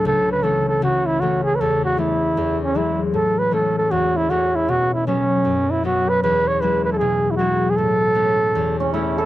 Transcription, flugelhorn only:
X:1
M:4/4
L:1/16
Q:"Swing" 1/4=156
K:A
V:1 name="Flugelhorn"
A2 B2 A2 A2 F2 E2 F2 G3/2 B/2 | A2 F2 E6 C2 E2 z2 | A2 B2 A2 A2 F2 E2 F2 E2 | F2 E2 C6 E2 F2 B2 |
B2 c2 B2 B A G3 E F3 G | A8- A2 C2 E2 A2 |]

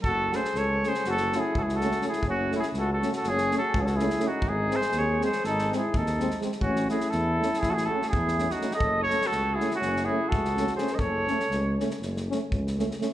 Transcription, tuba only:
X:1
M:9/8
L:1/8
Q:3/8=82
K:none
V:1 name="Tuba" clef=bass
^F,,,2 ^C,,2 F,,,2 C,,3 | ^F,,,2 ^C,,2 F,,,2 C,,3 | ^G,,,2 ^D,,2 G,,,2 D,,3 | A,,,2 E,,2 A,,,2 E,,3 |
^F,,,2 ^C,,2 F,,,2 C,,3 | ^F,,,2 ^C,,2 F,,,2 C,,3 |]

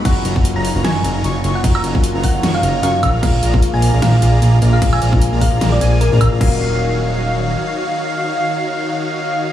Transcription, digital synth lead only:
X:1
M:4/4
L:1/16
Q:"Swing 16ths" 1/4=151
K:Ebm
V:1 name="Digital synth lead"
b z b2 z b2 b d' z b2 d' z d'2 | b z b2 z b2 b d' z b2 d' z b2 | b z b2 z b2 b b z b2 b z b2 | b z b2 z b2 b b z a3 b b b |
f16- | f16 |]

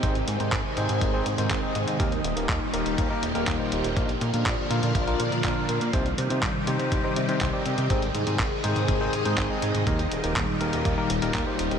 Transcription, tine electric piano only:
X:1
M:4/4
L:1/16
Q:1/4=122
K:Ablyd
V:1 name="Tine electric piano"
[CEAc] z2 [CEAc] z2 [CEAc]3 [CEAc] z [CEAc]2 [CEAe]3 | [B,EGB] z2 [B,EGB] z2 [B,EGB]3 [B,EGB] z [B,EGB]2 [B,EGc]3 | [B,DFB] z2 [B,DFB] z2 [B,DFB]3 [B,DFB] z2 [B,DFB]4 | [CEGc] z2 [CEGc] z2 [CEGc]3 [CEGc] z [CEGc]2 [CEGd]3 |
[CEAc] z2 [CEAc] z2 [CEAc]3 [CEAc] z [CEAc]2 [CEAe]3 | [B,EGB] z2 [B,EGB] z2 [B,EGB]3 [B,EGB] z [B,EGB]2 [B,EGc]3 |]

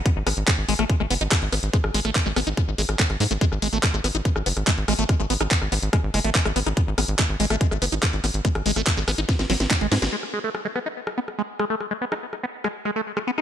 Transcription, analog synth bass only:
X:1
M:4/4
L:1/16
Q:1/4=143
K:G#phr
V:1 name="Analog synth bass" clef=bass
z G,,, G,,, G,,, z G,,, G,,, G,,, z G,,, F,,, G,,, z G,,, G,,, G,,, | z G,,, G,,, G,,, z G,,, G,,, G,,, z G,,, G,,, G,,, z G,,, G,, G,,, | z G,,, G,,, G,,, z G,,, G,,, G,,, z G,,, F,,, G,,, z G,,, G,,, G,,, | z G,,, G,,, G,,, z G,,, G,,, G,,, z G,,, F,,, G,,, z G,,, G,,, G,,, |
z G,,, G,,, G,,, z G,,, G,,, G,,, z G,,, F,,, G,,, z G,,, G,,, G,,, | z G,,, G,,, G,,, z G,,, G,,, G,,, z G,,, G,,, G,,, z G,,, G,, G,,, | z16 | z16 |]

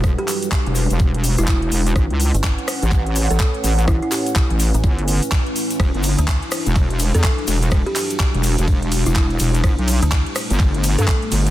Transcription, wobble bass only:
X:1
M:4/4
L:1/16
Q:"Swing 16ths" 1/4=125
K:Edor
V:1 name="Wobble bass" clef=bass
E,,, z4 E,,,2 E,,,4 E,,,3 E,,,2 | A,,, C,,2 z4 A,,,4 A,,, z2 A,,,2 | A,,, z4 A,,,2 z G,,,3 z4 z | E,,, G,,,2 z4 E,,,4 E,, z2 E,,,2 |
E,,, z4 E,,,2 E,,,4 E,,,3 E,,,2 | G,,, B,,,2 z4 G,,,4 G,, z2 G,,,2 |]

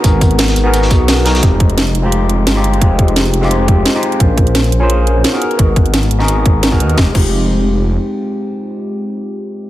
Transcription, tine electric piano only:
X:1
M:4/4
L:1/16
Q:"Swing 16ths" 1/4=173
K:Fm
V:1 name="Tine electric piano"
[_CE_GAB]6- [CEGAB] [CEGAB]6 z [CEGAB]2 | [A,CEG]6- [A,CEG] [A,CEFG]6 [A,CEFG]3 | [A,CEFG]6- [A,CEFG] [A,CEFG]6 [A,CEFG]3 | [DFABc]6- [DFABc] [DFABc]6 [=B,E_GA_B]3 |
[_CE_GAB]6- [CEGAB] [CEGAB]6 [CEGAB]3 | [A,CEFG] z [A,CEFG]12- [A,CEFG]2- | [A,CEFG]16 |]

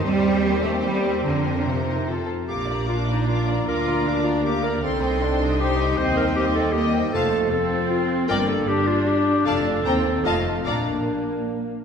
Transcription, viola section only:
X:1
M:3/4
L:1/8
Q:1/4=154
K:Bb
V:1 name="Viola section"
C6- | C4- C z | B,2 D4 | F2 D2 B,2 |
C2 D2 E2 | C2 C2 B,2 | A,2 C4 | B,2 D4 |
D2 C2 A,2 | B,4- B, z |]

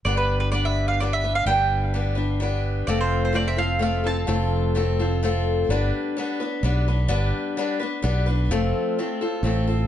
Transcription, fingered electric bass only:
X:1
M:3/4
L:1/8
Q:1/4=128
K:Gmix
V:1 name="Fingered electric bass" clef=bass
G,,,6 | G,,,6 | F,,,6 | F,,,6 |
G,,, z3 B,,,2 | G,,, z3 B,,,2 | F,,, z3 A,,,2 |]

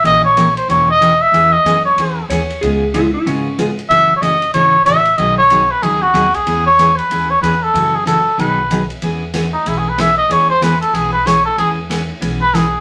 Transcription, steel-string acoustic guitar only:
X:1
M:4/4
L:1/8
Q:"Swing" 1/4=187
K:E
V:1 name="Steel-string acoustic guitar"
[E,^A,C=G^A] z [E,A,CGA] z [E,A,CGA] z [E,A,CGA] z | [E,B,CG] z [E,B,CG] z [E,B,CG] z [E,B,CG] z | [C,G,B,^EG] z [C,G,B,EG] z [C,G,B,EG] z [C,G,B,EG] z | [C,E,A,CF] z [C,E,A,CF] z [C,E,A,CF] z [C,E,A,CF] z |
[B,,D,F,B,DG] z [B,,D,F,B,DG] z [B,,D,F,B,DG] z [B,,D,F,B,DG] z | [E,B,CG] z [E,B,CG] z [E,B,CG] z [E,B,CG] z | [C,E,A,CF] z [C,E,A,CF] z [B,,D,F,B,DG] z [B,,D,F,B,DG] z | [E,B,CG] z [E,B,CG] z [E,B,CG] z [E,B,CG] z |
[E,B,CG] z [E,B,CG] z [E,B,CG] z [E,B,CG] z | [E,B,CG] z [E,B,CG] z [E,B,CG] z [E,B,CG] z |]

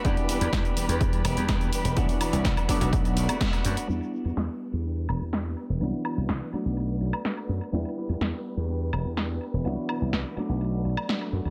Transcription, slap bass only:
X:1
M:4/4
L:1/16
Q:1/4=125
K:Em
V:1 name="Slap bass" clef=bass
E,, z2 E,, E,, z2 E,,3 E,,, E,,3 z E,,, | C,, z2 C,, C,, z2 B,,,3 B,,, z3 F,, z | E,, z2 E,, E,, z2 E,,3 E,,, E,,3 z E,,, | C,, z2 C,, C,, z2 B,,,3 B,,, z3 F,, z |
E,, z2 E,, E,, z2 E,,3 E,,, E,,3 z E,,, | C,, z2 C,, C,, z2 B,,,3 B,,, z3 F,, D,, |]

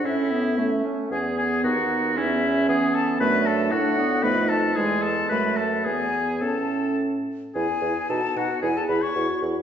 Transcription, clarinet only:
X:1
M:2/4
L:1/8
Q:1/4=113
K:A
V:1 name="Clarinet"
C B, A, C | B,2 ^D2 | C2 B,2 | A,2 D B, |
A,2 G,2 | A,2 B, z | C3 z | [K:E] E E D D |
E E E E |]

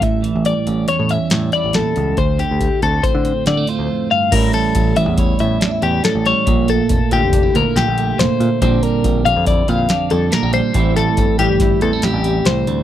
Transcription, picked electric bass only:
X:1
M:5/4
L:1/16
Q:1/4=140
K:Aphr
V:1 name="Picked electric bass" clef=bass
A,,,3 A,,,2 z A,,,2 z A,,2 z A,,2 z A,,,2 z ^C,,2 | D,,3 D,,2 z D,,2 z D,2 z D,2 z D,, z4 | A,,,2 z2 A,,,2 A,,, E,,3 A,,2 z2 E,,2 z A,,,2 z | B,,,4 F,,, z B,, F,,,3 D,, z B,,, B,,,3 F,,, z B,, z |
B,,,2 z2 B,,,2 B,,, F,,3 B,,2 z2 F,,2 z B,,,2 z | A,,,4 G,,, z A,, G,,,3 E,, z A,,, A,,,3 C,,2 D,,2 |]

